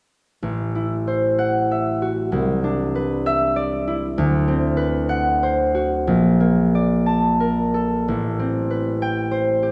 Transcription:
harp
0.43 A1
0.75 E4
1.07 C5
1.39 F#5
1.71 E5
2.02 F#4
2.32 C2
2.64 D4
2.95 B4
3.26 E5
3.56 D5
3.87 E4
4.18 D2
4.48 C4
4.77 B4
5.09 F#5
5.43 C5
5.75 F#4
6.07 A#1
6.40 A#3
6.75 D5
7.06 A5
7.40 A#4
7.74 A4
8.08 A1
8.39 C4
8.70 B4
9.02 G5
9.31 C5
9.63 G4

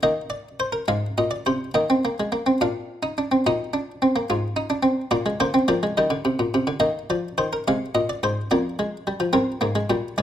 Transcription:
harpsichord
0.03 D#3 A#3 D#5
0.30 D5
0.60 C5
0.72 A#4
0.88 G#2 G#3 F5
1.18 A#2 D#5
1.31 D5
1.46 C3 C5
1.74 D#3 A#3 D#5
1.90 C4
2.05 A#3
2.20 G#3
2.32 A#3
2.46 C4
2.61 A#2 D4 F5
3.03 D#4
3.18 D4
3.32 C4
3.47 A#2 D#4 D#5
3.73 D4
4.02 C4
4.16 A#3
4.30 G#2 F4
4.56 D#4
4.70 D4
4.83 C4
5.11 A#2 A#3 D5
5.26 G#3
5.40 D3 A#3 C5
5.54 C4
5.68 F3 A#3 D5
5.83 G#3
5.97 D#3 G3 D#5
6.10 D3
6.25 C3
6.39 A#2
6.54 C3
6.67 D3
6.80 D#3 A#3 D#5
7.10 F3 D5
7.38 D#3 C5
7.53 A#4
7.68 C3 G#3 F5
7.95 A#2 D#5
8.09 D5
8.23 G#2 C5
8.51 F2 A#3 D5
8.79 G#3
9.07 G3
9.20 F3
9.33 G2 C4 A#4
9.61 G#2 A#3
9.75 G#3
9.90 A#2 G3
10.18 G#2 G#3 D5

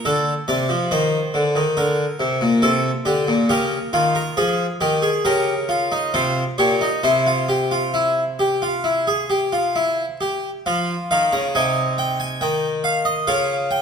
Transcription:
harpsichord
0.05 D3 A4
0.48 C3 D5
0.69 F3
0.91 D#3 C5
1.34 D3
1.55 D#3
1.77 D3 A#4
2.20 C3
2.41 A#2
2.62 C3 A4
3.05 D3 G4
3.28 A#2
3.49 C#3 G4 A#4
3.93 D#3 F4
4.15 A#4
4.37 F3 G#4
4.81 D#3 G4
5.02 G#4
5.25 C#3 G4 A#4
5.69 F4
5.92 D#4
6.14 C3 F4 C5
6.58 A#2 G4 C#5
6.81 D#4
7.03 C3 E4 C5
7.27 F4
7.49 G4
7.71 F4
7.94 E4
8.39 G4
8.62 F4
8.84 E4
9.07 G#4
9.30 G4
9.52 F4
9.76 E4
10.21 G4
10.66 F3 F4
11.11 D#3 F5
11.33 C#3 A#5
11.55 C3 D#4 G#5
11.98 G5
12.20 G#5
12.41 D#3 G5
12.84 F5
13.05 D#5
13.27 C#3 F4 F5
13.71 G5

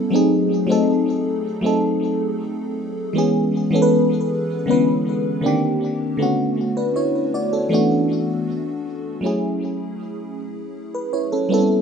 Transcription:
fm electric piano
Already playing: G3 B3 C#4 E4 A4
0.11 F#3 A3 C4 D#4
0.16 G#4
0.67 F#3 A3 C4 D#4
0.72 A4
1.61 F#3 A3 C4 D#4
1.66 A4
3.13 E3 G#3 B3 C#4
3.18 G#4
3.71 E3 G#3 B3 C#4
3.76 A4
3.82 B4
4.66 D3 G#3 B3 C#4
4.71 E3 B4
5.41 D3 A#3 C4 D4
5.46 D#3 G4
6.17 D3 A3 B3 C#4
6.22 F#4
6.77 D4 B4
6.96 E4 C#5
7.34 F#4 D5
7.53 C#4 A4
7.69 E3 A3 B3 D4
7.74 F#4
9.21 F#3 A3 C#4
9.25 E4 G#4
10.95 B4
11.13 E4 C#5
11.32 C#4 A4
11.49 G3 B3 C4 E4
11.54 A4
11.58 C#4

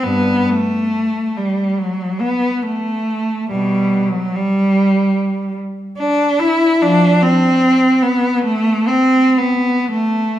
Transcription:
cello
0.03 G2 B3
0.49 A3
1.37 G3
1.79 F#3
2.20 B3
2.63 A3
3.51 B2 G3
4.08 F#3
4.36 G3
5.98 D4
6.39 E4
6.82 F3 D4
7.22 C4
8.02 B3
8.45 A3
8.88 C4
9.38 B3
9.91 A3

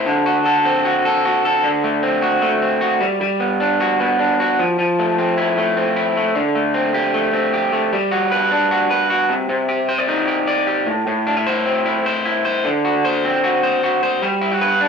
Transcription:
clean electric guitar
Already playing: C4 E4 C5
0.06 D3
0.26 F#4
0.46 A4
0.65 C4
0.85 F#4
1.05 A4
1.25 F#4
1.45 A4
1.64 D3
1.84 A3
2.03 C4
2.22 F#4
2.42 A3
2.62 C4
2.81 F#4
3.00 G3
3.21 G3
3.40 B3
3.60 D4
3.80 F#4
4.00 B3
4.19 D4
4.40 F#4
4.59 F3
4.79 F3
4.99 A3
5.18 C4
5.38 E4
5.57 A3
5.77 C4
5.96 E4
6.17 A3
6.35 D3
6.55 A3
6.74 C4
6.94 G4
7.14 A3
7.33 C4
7.54 G4
7.73 A3
7.93 G3
8.11 F#4
8.32 B4
8.52 D4
8.71 F#4
8.90 B4
9.10 F#4
9.30 C3
9.49 C3
9.69 G4
9.89 C5
9.98 D5
10.08 D#4
10.27 G4
10.48 D5
10.67 G4
10.86 A2
11.07 A2
11.27 D4
11.37 E4
11.47 C5
11.66 C4
11.86 E4
12.06 C5
12.25 E4
12.45 C5
12.65 D3
12.85 F#4
13.05 C5
13.25 C4
13.44 F#4
13.63 C5
13.83 F#4
14.03 C5
14.22 G3
14.41 E4
14.51 F#4
14.61 B4
14.81 D4

